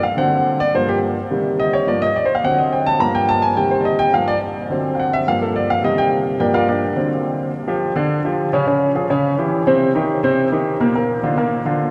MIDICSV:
0, 0, Header, 1, 2, 480
1, 0, Start_track
1, 0, Tempo, 283420
1, 1257, Time_signature, 4, 2, 24, 8
1, 20164, End_track
2, 0, Start_track
2, 0, Title_t, "Grand piano"
2, 0, Program_c, 0, 0
2, 55, Note_on_c, 0, 77, 88
2, 285, Note_on_c, 0, 50, 61
2, 289, Note_off_c, 0, 77, 0
2, 296, Note_on_c, 0, 54, 49
2, 303, Note_on_c, 0, 78, 91
2, 310, Note_on_c, 0, 60, 66
2, 969, Note_off_c, 0, 78, 0
2, 974, Note_off_c, 0, 50, 0
2, 980, Note_off_c, 0, 54, 0
2, 987, Note_off_c, 0, 60, 0
2, 1020, Note_on_c, 0, 74, 100
2, 1251, Note_off_c, 0, 74, 0
2, 1258, Note_on_c, 0, 43, 57
2, 1266, Note_on_c, 0, 53, 52
2, 1271, Note_on_c, 0, 72, 87
2, 1279, Note_on_c, 0, 58, 64
2, 1496, Note_off_c, 0, 72, 0
2, 1499, Note_on_c, 0, 67, 85
2, 1642, Note_off_c, 0, 67, 0
2, 1940, Note_off_c, 0, 43, 0
2, 1944, Note_off_c, 0, 53, 0
2, 1951, Note_off_c, 0, 58, 0
2, 2209, Note_on_c, 0, 48, 57
2, 2218, Note_on_c, 0, 51, 54
2, 2229, Note_on_c, 0, 55, 59
2, 2702, Note_on_c, 0, 75, 84
2, 2930, Note_off_c, 0, 75, 0
2, 2936, Note_on_c, 0, 73, 93
2, 3122, Note_off_c, 0, 48, 0
2, 3126, Note_off_c, 0, 51, 0
2, 3132, Note_off_c, 0, 55, 0
2, 3167, Note_off_c, 0, 73, 0
2, 3169, Note_on_c, 0, 43, 51
2, 3177, Note_on_c, 0, 53, 56
2, 3184, Note_on_c, 0, 74, 83
2, 3187, Note_on_c, 0, 58, 64
2, 3411, Note_off_c, 0, 74, 0
2, 3418, Note_on_c, 0, 75, 97
2, 3489, Note_off_c, 0, 43, 0
2, 3494, Note_off_c, 0, 53, 0
2, 3499, Note_off_c, 0, 58, 0
2, 3648, Note_off_c, 0, 75, 0
2, 3660, Note_on_c, 0, 74, 80
2, 3811, Note_off_c, 0, 74, 0
2, 3819, Note_on_c, 0, 72, 82
2, 3970, Note_off_c, 0, 72, 0
2, 3977, Note_on_c, 0, 77, 89
2, 4129, Note_off_c, 0, 77, 0
2, 4129, Note_on_c, 0, 50, 55
2, 4138, Note_on_c, 0, 54, 52
2, 4141, Note_on_c, 0, 78, 96
2, 4146, Note_on_c, 0, 60, 63
2, 4369, Note_off_c, 0, 78, 0
2, 4377, Note_on_c, 0, 75, 67
2, 4606, Note_off_c, 0, 75, 0
2, 4615, Note_on_c, 0, 79, 71
2, 4845, Note_off_c, 0, 79, 0
2, 4853, Note_on_c, 0, 81, 99
2, 5041, Note_off_c, 0, 50, 0
2, 5046, Note_off_c, 0, 54, 0
2, 5050, Note_off_c, 0, 60, 0
2, 5073, Note_on_c, 0, 43, 54
2, 5081, Note_on_c, 0, 53, 51
2, 5084, Note_off_c, 0, 81, 0
2, 5086, Note_on_c, 0, 82, 94
2, 5098, Note_on_c, 0, 58, 61
2, 5320, Note_off_c, 0, 82, 0
2, 5330, Note_on_c, 0, 79, 95
2, 5562, Note_off_c, 0, 79, 0
2, 5567, Note_on_c, 0, 81, 100
2, 5796, Note_on_c, 0, 80, 94
2, 5800, Note_off_c, 0, 81, 0
2, 5992, Note_off_c, 0, 43, 0
2, 5996, Note_off_c, 0, 53, 0
2, 6005, Note_off_c, 0, 58, 0
2, 6030, Note_on_c, 0, 48, 59
2, 6035, Note_off_c, 0, 80, 0
2, 6040, Note_on_c, 0, 51, 51
2, 6044, Note_on_c, 0, 79, 84
2, 6049, Note_on_c, 0, 55, 61
2, 6279, Note_off_c, 0, 79, 0
2, 6283, Note_on_c, 0, 72, 70
2, 6449, Note_on_c, 0, 74, 55
2, 6488, Note_off_c, 0, 74, 0
2, 6518, Note_off_c, 0, 72, 0
2, 6524, Note_on_c, 0, 75, 80
2, 6756, Note_on_c, 0, 79, 104
2, 6758, Note_off_c, 0, 75, 0
2, 6950, Note_off_c, 0, 48, 0
2, 6955, Note_off_c, 0, 51, 0
2, 6960, Note_off_c, 0, 55, 0
2, 6994, Note_off_c, 0, 79, 0
2, 6995, Note_on_c, 0, 43, 55
2, 7003, Note_on_c, 0, 53, 51
2, 7009, Note_on_c, 0, 77, 86
2, 7014, Note_on_c, 0, 58, 59
2, 7241, Note_off_c, 0, 77, 0
2, 7244, Note_on_c, 0, 74, 98
2, 7320, Note_off_c, 0, 43, 0
2, 7324, Note_off_c, 0, 53, 0
2, 7330, Note_off_c, 0, 58, 0
2, 7388, Note_off_c, 0, 74, 0
2, 7957, Note_on_c, 0, 50, 52
2, 7969, Note_on_c, 0, 54, 53
2, 7977, Note_on_c, 0, 60, 65
2, 8382, Note_on_c, 0, 77, 54
2, 8418, Note_off_c, 0, 77, 0
2, 8460, Note_on_c, 0, 78, 79
2, 8686, Note_off_c, 0, 78, 0
2, 8695, Note_on_c, 0, 76, 96
2, 8873, Note_off_c, 0, 50, 0
2, 8879, Note_off_c, 0, 54, 0
2, 8883, Note_off_c, 0, 60, 0
2, 8923, Note_off_c, 0, 76, 0
2, 8929, Note_on_c, 0, 43, 58
2, 8941, Note_on_c, 0, 53, 53
2, 8943, Note_on_c, 0, 77, 99
2, 8950, Note_on_c, 0, 58, 62
2, 9167, Note_off_c, 0, 77, 0
2, 9180, Note_on_c, 0, 69, 77
2, 9406, Note_off_c, 0, 69, 0
2, 9414, Note_on_c, 0, 74, 85
2, 9642, Note_off_c, 0, 74, 0
2, 9658, Note_on_c, 0, 77, 100
2, 9838, Note_off_c, 0, 43, 0
2, 9844, Note_off_c, 0, 53, 0
2, 9849, Note_off_c, 0, 58, 0
2, 9884, Note_off_c, 0, 77, 0
2, 9884, Note_on_c, 0, 48, 58
2, 9890, Note_on_c, 0, 51, 53
2, 9897, Note_on_c, 0, 75, 86
2, 9899, Note_on_c, 0, 55, 65
2, 10124, Note_off_c, 0, 75, 0
2, 10129, Note_on_c, 0, 79, 99
2, 10272, Note_off_c, 0, 79, 0
2, 10796, Note_off_c, 0, 48, 0
2, 10799, Note_off_c, 0, 51, 0
2, 10803, Note_off_c, 0, 55, 0
2, 10826, Note_on_c, 0, 43, 53
2, 10838, Note_on_c, 0, 53, 47
2, 10839, Note_on_c, 0, 79, 84
2, 10848, Note_on_c, 0, 58, 66
2, 10849, Note_on_c, 0, 67, 61
2, 10849, Note_on_c, 0, 70, 66
2, 10851, Note_on_c, 0, 74, 61
2, 11060, Note_off_c, 0, 70, 0
2, 11060, Note_off_c, 0, 74, 0
2, 11074, Note_off_c, 0, 79, 0
2, 11078, Note_on_c, 0, 77, 96
2, 11079, Note_off_c, 0, 67, 0
2, 11085, Note_on_c, 0, 74, 75
2, 11086, Note_on_c, 0, 65, 78
2, 11086, Note_on_c, 0, 70, 77
2, 11293, Note_off_c, 0, 74, 0
2, 11300, Note_off_c, 0, 70, 0
2, 11314, Note_off_c, 0, 77, 0
2, 11318, Note_off_c, 0, 65, 0
2, 11318, Note_on_c, 0, 74, 81
2, 11325, Note_on_c, 0, 70, 65
2, 11326, Note_on_c, 0, 62, 65
2, 11326, Note_on_c, 0, 67, 64
2, 11518, Note_off_c, 0, 43, 0
2, 11524, Note_off_c, 0, 53, 0
2, 11530, Note_off_c, 0, 58, 0
2, 11771, Note_off_c, 0, 67, 0
2, 11771, Note_off_c, 0, 70, 0
2, 11785, Note_on_c, 0, 50, 56
2, 11794, Note_on_c, 0, 54, 50
2, 11800, Note_on_c, 0, 60, 59
2, 11990, Note_off_c, 0, 74, 0
2, 11994, Note_off_c, 0, 62, 0
2, 12706, Note_off_c, 0, 50, 0
2, 12711, Note_off_c, 0, 54, 0
2, 12714, Note_off_c, 0, 60, 0
2, 13001, Note_on_c, 0, 53, 79
2, 13007, Note_on_c, 0, 65, 68
2, 13013, Note_on_c, 0, 67, 75
2, 13397, Note_off_c, 0, 53, 0
2, 13400, Note_off_c, 0, 65, 0
2, 13404, Note_off_c, 0, 67, 0
2, 13474, Note_on_c, 0, 50, 83
2, 13485, Note_on_c, 0, 62, 77
2, 13486, Note_on_c, 0, 74, 81
2, 13873, Note_off_c, 0, 50, 0
2, 13879, Note_off_c, 0, 62, 0
2, 13880, Note_off_c, 0, 74, 0
2, 13968, Note_on_c, 0, 53, 72
2, 13973, Note_on_c, 0, 65, 67
2, 13976, Note_on_c, 0, 67, 67
2, 14362, Note_off_c, 0, 53, 0
2, 14365, Note_off_c, 0, 65, 0
2, 14366, Note_off_c, 0, 67, 0
2, 14446, Note_on_c, 0, 49, 88
2, 14453, Note_on_c, 0, 61, 86
2, 14460, Note_on_c, 0, 73, 79
2, 14644, Note_off_c, 0, 49, 0
2, 14648, Note_off_c, 0, 61, 0
2, 14652, Note_off_c, 0, 73, 0
2, 14683, Note_on_c, 0, 49, 70
2, 14694, Note_on_c, 0, 61, 74
2, 14695, Note_on_c, 0, 73, 68
2, 15079, Note_off_c, 0, 49, 0
2, 15086, Note_off_c, 0, 61, 0
2, 15087, Note_off_c, 0, 73, 0
2, 15160, Note_on_c, 0, 53, 69
2, 15166, Note_on_c, 0, 65, 68
2, 15168, Note_on_c, 0, 68, 68
2, 15361, Note_off_c, 0, 53, 0
2, 15364, Note_off_c, 0, 65, 0
2, 15366, Note_off_c, 0, 68, 0
2, 15409, Note_on_c, 0, 49, 75
2, 15414, Note_on_c, 0, 61, 84
2, 15419, Note_on_c, 0, 73, 84
2, 15804, Note_off_c, 0, 49, 0
2, 15807, Note_off_c, 0, 61, 0
2, 15810, Note_off_c, 0, 73, 0
2, 15890, Note_on_c, 0, 52, 71
2, 15894, Note_on_c, 0, 64, 69
2, 15902, Note_on_c, 0, 67, 69
2, 16285, Note_off_c, 0, 52, 0
2, 16287, Note_off_c, 0, 64, 0
2, 16291, Note_off_c, 0, 67, 0
2, 16375, Note_on_c, 0, 48, 86
2, 16378, Note_on_c, 0, 60, 90
2, 16389, Note_on_c, 0, 72, 84
2, 16768, Note_off_c, 0, 48, 0
2, 16770, Note_off_c, 0, 60, 0
2, 16776, Note_off_c, 0, 72, 0
2, 16852, Note_on_c, 0, 51, 75
2, 16860, Note_on_c, 0, 63, 72
2, 16862, Note_on_c, 0, 67, 76
2, 17247, Note_off_c, 0, 51, 0
2, 17251, Note_off_c, 0, 63, 0
2, 17253, Note_off_c, 0, 67, 0
2, 17327, Note_on_c, 0, 48, 89
2, 17339, Note_on_c, 0, 60, 83
2, 17342, Note_on_c, 0, 72, 88
2, 17725, Note_off_c, 0, 48, 0
2, 17731, Note_off_c, 0, 60, 0
2, 17733, Note_off_c, 0, 72, 0
2, 17818, Note_on_c, 0, 51, 70
2, 17821, Note_on_c, 0, 63, 69
2, 17830, Note_on_c, 0, 67, 72
2, 18211, Note_off_c, 0, 51, 0
2, 18213, Note_off_c, 0, 63, 0
2, 18218, Note_off_c, 0, 67, 0
2, 18296, Note_on_c, 0, 46, 85
2, 18298, Note_on_c, 0, 58, 86
2, 18305, Note_on_c, 0, 70, 80
2, 18493, Note_off_c, 0, 46, 0
2, 18494, Note_off_c, 0, 58, 0
2, 18498, Note_off_c, 0, 70, 0
2, 18542, Note_on_c, 0, 46, 68
2, 18548, Note_on_c, 0, 58, 67
2, 18555, Note_on_c, 0, 70, 76
2, 18934, Note_off_c, 0, 46, 0
2, 18937, Note_off_c, 0, 58, 0
2, 18942, Note_off_c, 0, 70, 0
2, 19024, Note_on_c, 0, 50, 71
2, 19029, Note_on_c, 0, 62, 71
2, 19033, Note_on_c, 0, 65, 69
2, 19219, Note_off_c, 0, 50, 0
2, 19222, Note_off_c, 0, 62, 0
2, 19224, Note_off_c, 0, 65, 0
2, 19258, Note_on_c, 0, 46, 82
2, 19265, Note_on_c, 0, 58, 88
2, 19269, Note_on_c, 0, 70, 75
2, 19652, Note_off_c, 0, 46, 0
2, 19657, Note_off_c, 0, 58, 0
2, 19659, Note_off_c, 0, 70, 0
2, 19736, Note_on_c, 0, 50, 68
2, 19742, Note_on_c, 0, 62, 70
2, 19748, Note_on_c, 0, 65, 71
2, 20131, Note_off_c, 0, 50, 0
2, 20136, Note_off_c, 0, 62, 0
2, 20139, Note_off_c, 0, 65, 0
2, 20164, End_track
0, 0, End_of_file